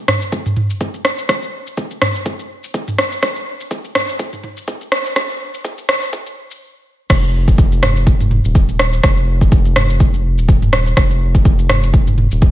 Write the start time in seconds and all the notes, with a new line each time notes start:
0.08 cross-stick, mid tom
0.22 shaker
0.32 kick, closed hi-hat, shaker
0.46 closed hi-hat, mid tom, shaker
0.56 mid tom
0.70 shaker
0.81 kick, closed hi-hat, shaker
0.94 closed hi-hat, shaker
1.05 cross-stick
1.18 closed hi-hat, shaker
1.29 kick, cross-stick, closed hi-hat, shaker
1.43 closed hi-hat, shaker
1.67 closed hi-hat, shaker
1.77 kick, closed hi-hat, shaker
1.91 closed hi-hat, shaker
2.02 cross-stick, mid tom
2.15 shaker
2.26 kick, closed hi-hat, shaker
2.40 closed hi-hat, shaker
2.64 shaker
2.74 kick, closed hi-hat, shaker
2.88 closed hi-hat, mid tom, shaker
2.98 cross-stick
3.12 closed hi-hat, shaker
3.23 kick, cross-stick, closed hi-hat, shaker
3.36 closed hi-hat, shaker
3.60 closed hi-hat, shaker
3.71 kick, closed hi-hat, shaker
3.85 closed hi-hat, shaker
3.95 cross-stick, mid tom
4.09 shaker
4.19 kick, closed hi-hat, shaker
4.33 closed hi-hat, mid tom, shaker
4.43 mid tom
4.57 shaker
4.68 kick, closed hi-hat, shaker
4.81 closed hi-hat, shaker
4.92 cross-stick
5.06 closed hi-hat, shaker
5.16 kick, cross-stick, closed hi-hat, shaker
5.30 closed hi-hat, shaker
5.54 closed hi-hat, shaker
5.64 kick, closed hi-hat, shaker
5.78 closed hi-hat, shaker
5.89 cross-stick, mid tom
6.02 shaker
6.13 kick, closed hi-hat, shaker
6.27 closed hi-hat, shaker
6.51 shaker
7.10 F1, kick, cross-stick, closed hi-hat, crash, shaker
7.24 closed hi-hat, shaker
7.48 kick, closed hi-hat, shaker
7.58 kick, closed hi-hat, shaker
7.72 closed hi-hat, shaker
7.83 cross-stick, mid tom
7.96 shaker
8.07 kick, closed hi-hat, shaker
8.21 closed hi-hat, mid tom, shaker
8.31 mid tom
8.45 D#1, shaker
8.55 kick, closed hi-hat, shaker
8.69 closed hi-hat, shaker
8.79 cross-stick
8.93 closed hi-hat, shaker
9.03 F1, kick, cross-stick, closed hi-hat, shaker
9.17 closed hi-hat, shaker
9.41 kick, closed hi-hat, shaker
9.52 kick, closed hi-hat, shaker
9.65 closed hi-hat, shaker
9.76 cross-stick, mid tom
9.90 shaker
10.00 kick, closed hi-hat, shaker
10.14 closed hi-hat, shaker
10.38 D#1, shaker
10.49 kick, closed hi-hat, shaker
10.62 closed hi-hat, mid tom, shaker
10.73 cross-stick
10.87 closed hi-hat, shaker
10.97 F1, kick, cross-stick, closed hi-hat, shaker
11.11 closed hi-hat, shaker
11.35 kick, closed hi-hat, shaker
11.45 kick, closed hi-hat, shaker
11.59 closed hi-hat, shaker
11.69 cross-stick, mid tom
11.83 shaker
11.94 kick, closed hi-hat, shaker
12.07 closed hi-hat, mid tom, shaker
12.18 mid tom
12.31 D#1, shaker
12.42 kick, closed hi-hat, shaker